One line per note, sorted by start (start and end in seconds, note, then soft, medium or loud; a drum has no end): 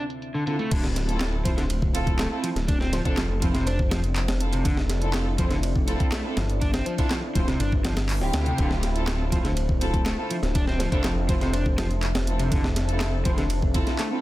0.00 0.67 D3 medium
0.00 0.67 C4 medium
0.00 0.67 E5 medium
0.00 0.70 A5 medium
0.10 closed hi-hat soft
0.22 closed hi-hat soft
0.34 0.43 D3 medium
0.47 0.55 D3 medium
0.47 0.54 C4 medium
0.47 0.54 E4 medium
0.47 0.53 F4 medium
0.47 0.54 A4 medium
0.47 closed hi-hat medium
0.59 0.70 A3 medium
0.59 closed hi-hat soft
0.71 2.27 D1 loud
0.71 0.83 D3 loud
0.71 14.21 D4 medium
0.71 14.21 C5 medium
0.71 8.57 D5 medium
0.71 14.21 E5 medium
0.71 kick loud
0.71 closed hi-hat soft
0.71 crash loud
0.71 ride medium
0.84 snare soft
0.96 snare soft
0.96 closed hi-hat medium
0.96 ride medium
1.08 1.42 C4 medium
1.08 1.42 E4 medium
1.08 1.42 F4 medium
1.08 1.42 A4 medium
1.08 closed hi-hat soft
1.21 snare loud
1.21 clap loud
1.21 closed hi-hat soft
1.21 ride medium
1.45 1.50 F3 medium
1.45 1.52 C4 medium
1.45 1.52 E4 medium
1.45 1.52 F4 medium
1.45 1.52 C5 medium
1.45 kick loud
1.45 closed hi-hat medium
1.45 ride medium
1.58 1.62 D3 medium
1.58 snare soft
1.58 closed hi-hat soft
1.70 closed hi-hat soft
1.70 ride medium
1.82 kick medium
1.94 2.05 C4 medium
1.94 2.05 E4 medium
1.94 2.05 F4 medium
1.94 2.05 A4 loud
1.94 closed hi-hat medium
1.94 ride medium
2.07 kick loud
2.07 closed hi-hat soft
2.19 2.27 A3 medium
2.19 snare loud
2.19 clap loud
2.19 closed hi-hat soft
2.19 ride medium
2.32 2.38 C4 medium
2.32 2.38 E4 medium
2.32 2.38 F4 medium
2.32 2.38 A4 medium
2.43 2.49 F3 medium
2.43 closed hi-hat medium
2.43 ride medium
2.56 3.01 D1 medium
2.56 snare soft
2.56 closed hi-hat soft
2.68 2.80 D4 medium
2.68 kick loud
2.68 closed hi-hat soft
2.68 ride medium
2.80 2.91 C4 medium
2.80 snare soft
2.93 3.01 F3 medium
2.93 3.01 C5 medium
2.93 snare soft
2.93 closed hi-hat medium
2.93 ride medium
3.05 5.96 F1 loud
3.05 3.16 C4 medium
3.05 3.17 D4 medium
3.05 3.16 E4 medium
3.05 3.16 F4 medium
3.05 3.16 A4 loud
3.05 3.13 C5 medium
3.05 kick medium
3.05 closed hi-hat soft
3.17 3.26 F3 medium
3.17 snare loud
3.17 clap loud
3.17 closed hi-hat soft
3.17 ride medium
3.42 3.47 F3 medium
3.42 3.53 C4 medium
3.42 3.53 E4 medium
3.42 3.53 F4 medium
3.42 3.53 C5 loud
3.42 kick loud
3.42 closed hi-hat medium
3.42 ride medium
3.54 3.66 C3 medium
3.54 snare soft
3.54 closed hi-hat soft
3.66 3.78 D4 medium
3.66 4.36 C5 medium
3.66 closed hi-hat soft
3.66 ride medium
3.79 kick medium
3.91 3.99 F3 medium
3.91 snare loud
3.91 closed hi-hat medium
3.91 ride medium
4.04 closed hi-hat soft
4.16 clap loud
4.16 closed hi-hat soft
4.16 ride medium
4.28 snare loud
4.28 ride medium
4.40 4.47 C4 medium
4.40 4.47 E4 medium
4.40 4.47 F4 medium
4.40 4.47 A4 medium
4.40 closed hi-hat medium
4.53 4.64 C3 medium
4.53 closed hi-hat soft
4.53 ride medium
4.65 4.77 D3 loud
4.65 kick loud
4.65 closed hi-hat soft
4.65 ride medium
4.77 snare soft
4.90 snare soft
4.90 closed hi-hat medium
4.90 ride medium
5.02 5.36 C4 medium
5.02 5.36 E4 medium
5.02 5.36 F4 medium
5.02 5.36 A4 loud
5.02 closed hi-hat soft
5.14 snare loud
5.14 clap loud
5.14 closed hi-hat soft
5.14 ride medium
5.38 5.44 F3 medium
5.38 5.45 C4 medium
5.38 5.45 E4 medium
5.38 5.45 F4 medium
5.38 5.45 C5 medium
5.38 kick medium
5.38 closed hi-hat medium
5.38 ride medium
5.51 5.56 D3 medium
5.51 snare soft
5.51 closed hi-hat soft
5.63 closed hi-hat soft
5.63 ride medium
5.76 kick medium
5.88 5.99 C4 medium
5.88 5.99 E4 medium
5.88 5.99 F4 medium
5.88 5.99 A4 loud
5.88 closed hi-hat medium
5.88 ride medium
6.00 kick loud
6.00 closed hi-hat soft
6.12 6.21 A3 medium
6.12 snare loud
6.12 clap loud
6.12 closed hi-hat soft
6.12 ride medium
6.24 6.31 C4 medium
6.24 6.31 E4 medium
6.24 6.31 F4 medium
6.24 6.31 A4 loud
6.37 6.82 G1 medium
6.37 6.42 F3 medium
6.37 snare loud
6.37 closed hi-hat medium
6.37 ride medium
6.50 closed hi-hat soft
6.61 6.73 D4 medium
6.61 kick medium
6.61 closed hi-hat soft
6.61 ride medium
6.74 6.85 C4 medium
6.74 snare loud
6.74 ride medium
6.86 6.94 F3 medium
6.86 6.94 C5 medium
6.86 closed hi-hat medium
6.98 7.09 C4 medium
6.98 7.10 D4 medium
6.98 7.09 E4 medium
6.98 7.09 F4 medium
6.98 7.09 A4 loud
6.98 7.06 C5 medium
6.98 kick medium
6.98 closed hi-hat soft
6.98 ride medium
7.10 7.19 F3 medium
7.10 snare loud
7.10 clap loud
7.10 closed hi-hat soft
7.10 ride medium
7.35 7.54 D1 medium
7.35 7.40 F3 medium
7.35 7.46 C4 medium
7.35 7.46 E4 medium
7.35 7.46 F4 medium
7.35 7.46 C5 loud
7.35 kick medium
7.35 closed hi-hat medium
7.35 ride medium
7.48 7.59 C3 medium
7.48 snare soft
7.48 closed hi-hat soft
7.60 8.21 G1 medium
7.60 7.72 D4 medium
7.60 closed hi-hat soft
7.60 ride medium
7.72 kick medium
7.85 7.93 F3 medium
7.85 snare loud
7.85 closed hi-hat medium
7.85 ride medium
7.97 snare loud
7.97 closed hi-hat soft
7.97 ride medium
8.09 clap loud
8.09 closed hi-hat soft
8.09 open hi-hat medium
8.21 8.31 D1 medium
8.21 8.92 C4 loud
8.21 8.92 E4 medium
8.21 8.92 F4 medium
8.21 8.92 G4 loud
8.21 snare soft
8.33 8.53 D2 loud
8.33 snare loud
8.33 closed hi-hat medium
8.33 ride medium
8.46 8.58 C3 medium
8.46 closed hi-hat soft
8.58 10.14 D1 loud
8.58 8.70 D3 loud
8.58 14.21 A5 medium
8.58 kick loud
8.58 closed hi-hat soft
8.58 ride medium
8.71 snare soft
8.83 snare soft
8.83 closed hi-hat medium
8.83 ride medium
8.95 9.29 C4 medium
8.95 9.29 E4 medium
8.95 9.29 F4 medium
8.95 9.29 A4 medium
8.95 closed hi-hat soft
9.08 snare loud
9.08 clap loud
9.08 closed hi-hat soft
9.08 ride medium
9.32 9.37 F3 medium
9.32 9.39 C4 medium
9.32 9.39 E4 medium
9.32 9.39 F4 medium
9.32 9.39 C5 medium
9.32 kick loud
9.32 closed hi-hat medium
9.32 ride medium
9.44 9.49 D3 medium
9.44 snare soft
9.44 closed hi-hat soft
9.57 closed hi-hat soft
9.57 ride medium
9.69 kick medium
9.81 9.92 C4 medium
9.81 9.92 E4 medium
9.81 9.92 F4 medium
9.81 9.92 A4 loud
9.81 closed hi-hat medium
9.81 ride medium
9.94 kick loud
9.94 closed hi-hat soft
10.06 10.14 A3 medium
10.06 snare loud
10.06 clap loud
10.06 closed hi-hat soft
10.06 ride medium
10.18 10.25 C4 medium
10.18 10.25 E4 medium
10.18 10.25 F4 medium
10.18 10.25 A4 medium
10.31 10.35 F3 medium
10.31 closed hi-hat medium
10.31 ride medium
10.42 10.87 D1 medium
10.42 snare soft
10.42 closed hi-hat soft
10.55 10.67 D4 medium
10.55 kick loud
10.55 closed hi-hat soft
10.55 ride medium
10.67 10.78 C4 medium
10.67 snare soft
10.79 10.88 F3 medium
10.79 10.87 C5 medium
10.79 snare soft
10.79 closed hi-hat medium
10.79 ride medium
10.92 13.83 F1 loud
10.92 11.03 C4 loud
10.92 11.04 D4 medium
10.92 11.03 E4 medium
10.92 11.03 F4 medium
10.92 11.03 A4 loud
10.92 11.00 C5 medium
10.92 kick loud
10.92 closed hi-hat soft
11.04 11.13 F3 medium
11.04 snare loud
11.04 clap loud
11.04 closed hi-hat soft
11.04 ride medium
11.29 11.34 F3 medium
11.29 11.40 C4 medium
11.29 11.40 E4 medium
11.29 11.40 F4 medium
11.29 11.40 C5 loud
11.29 kick loud
11.29 closed hi-hat medium
11.29 ride medium
11.41 11.53 C3 medium
11.41 snare soft
11.41 closed hi-hat soft
11.53 11.65 D4 medium
11.53 12.22 C5 medium
11.53 closed hi-hat soft
11.53 ride medium
11.66 kick medium
11.78 11.86 F3 medium
11.78 snare loud
11.78 closed hi-hat medium
11.78 ride medium
11.91 closed hi-hat soft
12.03 clap loud
12.03 closed hi-hat soft
12.03 ride medium
12.15 snare loud
12.15 ride medium
12.27 12.34 C4 medium
12.27 12.34 E4 medium
12.27 12.34 F4 medium
12.27 12.34 A4 medium
12.27 closed hi-hat medium
12.39 12.51 C3 medium
12.39 closed hi-hat soft
12.39 ride medium
12.52 12.63 D3 loud
12.52 kick loud
12.52 closed hi-hat soft
12.52 ride medium
12.64 snare medium
12.76 snare soft
12.76 closed hi-hat medium
12.76 ride medium
12.89 13.23 C4 medium
12.89 13.23 E4 medium
12.89 13.23 F4 medium
12.89 13.23 A4 medium
12.89 closed hi-hat soft
13.01 snare loud
13.01 clap loud
13.01 closed hi-hat soft
13.01 ride medium
13.25 13.30 F3 medium
13.25 13.32 C4 medium
13.25 13.32 E4 medium
13.25 13.32 F4 medium
13.25 13.32 C5 medium
13.25 kick loud
13.25 closed hi-hat medium
13.25 ride medium
13.38 13.43 D3 medium
13.38 snare soft
13.38 closed hi-hat soft
13.50 closed hi-hat soft
13.50 ride medium
13.62 kick medium
13.74 13.85 C4 loud
13.74 13.85 E4 medium
13.74 13.85 F4 medium
13.74 13.85 A4 loud
13.74 kick loud
13.74 closed hi-hat medium
13.74 ride medium
13.87 snare soft
13.87 closed hi-hat soft
13.99 14.08 A3 medium
13.99 snare soft
13.99 clap loud
13.99 closed hi-hat soft
13.99 ride medium
14.12 14.18 C4 medium
14.12 14.18 E4 medium
14.12 14.18 F4 medium
14.12 14.18 A4 medium